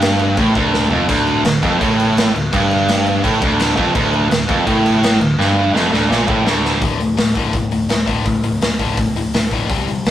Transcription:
0.00 0.34 G1 loud
0.00 0.38 G2 loud
0.00 snare loud
0.00 crash medium
0.19 crash medium
0.37 0.54 A1 medium
0.37 0.55 A2 loud
0.37 kick loud
0.37 crash medium
0.55 0.89 D1 loud
0.55 0.91 D2 medium
0.55 kick loud
0.55 crash medium
0.74 snare medium
0.91 1.08 F1 medium
0.91 1.08 F2 medium
0.91 floor tom medium
1.08 1.42 D1 medium
1.08 1.44 D2 loud
1.08 kick medium
1.08 splash medium
1.08 crash medium
1.27 crash medium
1.44 1.61 D1 medium
1.44 1.59 D2 medium
1.44 snare loud
1.44 crash medium
1.63 1.79 F1 loud
1.63 1.80 F2 loud
1.63 kick loud
1.63 crash medium
1.81 2.30 A1 loud
1.81 2.34 A2 loud
1.81 kick loud
1.81 crash medium
2.00 crash medium
2.17 snare loud
2.17 crash medium
2.34 2.51 D1 medium
2.34 2.49 D2 medium
2.34 crash medium
2.53 3.20 G1 medium
2.53 3.23 G2 loud
2.53 kick loud
2.53 crash medium
2.71 crash medium
2.88 snare loud
2.88 crash medium
3.06 crash medium
3.23 3.41 A1 medium
3.23 3.40 A2 loud
3.23 kick loud
3.23 crash medium
3.41 3.75 D1 loud
3.41 3.76 D2 medium
3.41 kick loud
3.41 crash medium
3.60 snare loud
3.60 crash medium
3.77 3.94 F1 medium
3.77 3.94 F2 loud
3.77 kick medium
3.77 crash soft
3.95 4.29 D1 loud
3.95 4.28 D2 loud
3.95 kick loud
3.95 crash medium
4.13 crash medium
4.30 4.47 D1 medium
4.30 4.45 D2 medium
4.30 snare loud
4.30 crash medium
4.48 4.65 F1 loud
4.48 4.66 F2 loud
4.48 kick loud
4.48 crash medium
4.66 5.17 A1 medium
4.66 5.20 A2 loud
4.66 kick loud
4.66 crash medium
4.86 crash medium
5.03 snare loud
5.03 crash medium
5.19 5.37 D1 medium
5.19 5.35 D2 medium
5.19 crash medium
5.37 5.71 G1 medium
5.37 5.74 G2 loud
5.37 snare medium
5.73 5.90 F1 medium
5.73 5.92 F2 loud
5.73 snare medium
5.91 6.08 D1 loud
5.91 6.10 D2 loud
5.91 snare medium
6.09 6.26 A#1 loud
6.09 6.28 A#2 loud
6.09 snare medium
6.27 6.44 A1 medium
6.27 6.46 A2 medium
6.27 kick loud
6.45 6.79 D1 medium
6.45 6.81 D2 loud
6.45 snare loud
6.65 snare medium
6.82 6.98 D1 medium
6.82 6.98 D2 medium
6.82 6.99 A2 medium
6.82 7.00 D3 medium
6.82 kick loud
6.82 open hi-hat medium
6.98 7.15 D1 medium
6.98 7.16 D2 medium
6.98 7.16 A2 medium
6.98 open hi-hat medium
7.16 7.33 D1 medium
7.16 7.34 D2 medium
7.16 7.34 A2 medium
7.16 snare loud
7.16 open hi-hat medium
7.35 7.52 D1 medium
7.35 7.53 D2 medium
7.35 7.53 A2 medium
7.35 7.54 D3 loud
7.35 kick medium
7.35 open hi-hat medium
7.53 7.70 D1 medium
7.53 7.70 D2 medium
7.53 7.70 A2 medium
7.53 kick loud
7.53 open hi-hat medium
7.71 7.88 D1 medium
7.71 7.88 D2 medium
7.71 7.88 A2 medium
7.71 open hi-hat medium
7.89 8.06 D1 medium
7.89 8.05 D2 medium
7.89 8.06 A2 medium
7.89 snare loud
7.89 open hi-hat medium
8.06 8.24 D1 medium
8.06 8.24 D2 medium
8.06 8.24 A2 medium
8.06 8.25 D3 medium
8.06 kick medium
8.06 open hi-hat medium
8.26 8.42 D1 loud
8.26 8.42 D2 medium
8.26 8.42 A2 medium
8.26 kick loud
8.26 open hi-hat medium
8.42 8.59 D1 medium
8.42 8.60 D2 medium
8.42 8.60 A2 medium
8.42 open hi-hat medium
8.61 8.78 D1 medium
8.61 8.78 D2 medium
8.61 8.78 A2 medium
8.61 snare loud
8.61 open hi-hat medium
8.79 8.96 D1 loud
8.79 8.96 D2 medium
8.79 8.97 A2 medium
8.79 8.97 D3 loud
8.79 kick medium
8.79 open hi-hat medium
8.97 9.14 D1 medium
8.97 9.14 D2 medium
8.97 9.14 A2 medium
8.97 kick loud
8.97 open hi-hat medium
9.15 9.31 D1 medium
9.15 9.32 D2 medium
9.15 9.32 A2 medium
9.15 open hi-hat medium
9.32 9.49 D1 medium
9.32 9.50 D2 medium
9.32 9.50 A2 medium
9.32 snare loud
9.32 open hi-hat medium
9.51 9.68 D1 medium
9.51 9.69 D2 medium
9.51 9.69 A2 medium
9.51 9.70 D3 medium
9.51 kick medium
9.51 open hi-hat medium
9.69 9.86 C2 loud
9.69 9.86 C3 medium
9.69 9.87 G3 loud
9.69 9.87 C4 loud
9.69 kick loud
9.69 open hi-hat medium
9.87 10.04 C2 medium
9.87 10.04 C3 medium
9.87 10.04 G3 medium
9.87 open hi-hat medium
10.05 10.11 C2 medium
10.05 10.11 C3 medium
10.05 10.11 G3 medium
10.05 snare loud
10.05 open hi-hat medium

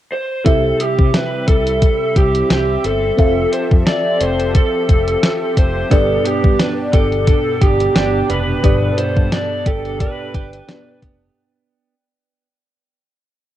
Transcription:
0.12 0.43 C5 medium
0.45 0.71 C2 medium
0.45 1.44 C3 medium
0.45 3.16 G3 medium
0.45 3.14 C4 medium
0.45 5.87 C4 medium
0.45 3.14 E4 medium
0.45 3.15 G4 medium
0.45 0.81 A4 medium
0.45 5.87 E5 medium
0.45 3.15 E5 medium
0.45 kick medium
0.45 closed hi-hat medium
0.80 1.12 G4 medium
0.80 closed hi-hat medium
0.99 1.10 C3 medium
0.99 kick medium
1.14 1.48 B4 medium
1.14 snare medium
1.14 closed hi-hat medium
1.48 1.88 C2 medium
1.48 2.18 A4 medium
1.48 kick medium
1.48 closed hi-hat medium
1.67 closed hi-hat soft
1.82 kick medium
1.82 closed hi-hat medium
2.16 2.42 C2 medium
2.16 2.48 G4 medium
2.16 kick medium
2.16 closed hi-hat medium
2.35 closed hi-hat soft
2.50 2.76 C2 medium
2.50 2.85 G4 medium
2.50 snare medium
2.50 closed hi-hat medium
2.84 3.10 G1 medium
2.84 3.49 A4 medium
2.84 closed hi-hat medium
3.17 3.44 F1 medium
3.17 5.88 F3 medium
3.17 5.87 C4 medium
3.17 5.87 F4 medium
3.17 8.60 G4 medium
3.17 5.89 A4 medium
3.17 5.87 A4 medium
3.17 5.88 E5 medium
3.17 kick medium
3.17 closed hi-hat medium
3.53 3.62 C5 medium
3.53 closed hi-hat medium
3.71 3.83 F2 medium
3.71 kick medium
3.87 4.22 D5 medium
3.87 snare medium
3.87 closed hi-hat medium
4.21 4.60 F1 medium
4.21 4.53 C5 medium
4.21 closed hi-hat medium
4.40 closed hi-hat soft
4.55 5.53 A4 medium
4.55 kick medium
4.55 closed hi-hat medium
4.89 5.14 F1 medium
4.89 kick medium
4.89 closed hi-hat medium
5.08 closed hi-hat soft
5.23 snare loud
5.23 closed hi-hat medium
5.57 5.83 F1 medium
5.57 5.91 C5 medium
5.57 kick medium
5.57 closed hi-hat medium
5.90 6.17 G1 medium
5.90 6.89 G2 medium
5.90 11.33 B2 medium
5.90 8.59 B3 medium
5.90 6.25 B3 medium
5.90 8.60 D4 medium
5.90 11.33 D4 medium
5.90 8.60 G4 medium
5.90 6.23 A4 medium
5.90 8.60 D5 medium
5.90 kick medium
5.90 closed hi-hat medium
6.25 8.29 B3 medium
6.25 6.57 G4 medium
6.25 closed hi-hat medium
6.44 6.56 G2 medium
6.44 kick medium
6.59 7.27 D4 medium
6.59 6.69 B4 medium
6.59 snare medium
6.59 closed hi-hat medium
6.93 7.33 G1 medium
6.93 7.61 G4 medium
6.93 7.64 A4 medium
6.93 kick medium
6.93 closed hi-hat medium
7.12 closed hi-hat soft
7.27 7.95 D4 medium
7.27 kick medium
7.27 closed hi-hat medium
7.61 7.87 G1 medium
7.61 9.66 G4 medium
7.61 7.94 G4 medium
7.61 kick medium
7.61 closed hi-hat medium
7.80 closed hi-hat soft
7.95 8.21 G1 medium
7.95 9.32 D4 medium
7.95 8.31 G4 medium
7.95 snare loud
7.95 closed hi-hat medium
8.30 8.55 F1 medium
8.30 8.63 B3 medium
8.30 8.98 B4 medium
8.30 closed hi-hat medium
8.63 8.89 G1 medium
8.63 9.62 G2 medium
8.63 10.64 B2 medium
8.63 8.98 B3 medium
8.63 10.64 D4 medium
8.63 10.65 G4 medium
8.63 11.34 A4 medium
8.63 10.65 D5 medium
8.63 kick medium
8.63 closed hi-hat medium
8.98 11.02 B3 medium
8.98 9.33 C5 medium
8.98 closed hi-hat medium
9.17 9.28 G2 medium
9.17 kick medium
9.32 10.00 D4 medium
9.32 9.67 D5 medium
9.32 snare medium
9.32 closed hi-hat medium
9.66 10.06 G1 medium
9.66 10.34 G4 medium
9.66 10.00 A4 medium
9.66 kick medium
9.66 closed hi-hat medium
9.85 closed hi-hat soft
10.00 10.68 D4 medium
10.00 10.99 B4 medium
10.00 kick medium
10.00 closed hi-hat medium
10.34 10.60 G1 medium
10.34 11.94 G4 medium
10.34 kick medium
10.34 closed hi-hat medium
10.53 closed hi-hat soft
10.68 11.36 B3 soft
10.68 11.37 D4 soft
10.68 11.94 D4 medium
10.68 11.37 G4 soft
10.68 11.37 D5 soft
10.68 snare loud
10.68 closed hi-hat medium
11.02 11.28 F1 medium
11.02 11.94 B3 medium
11.02 kick medium
11.02 closed hi-hat medium

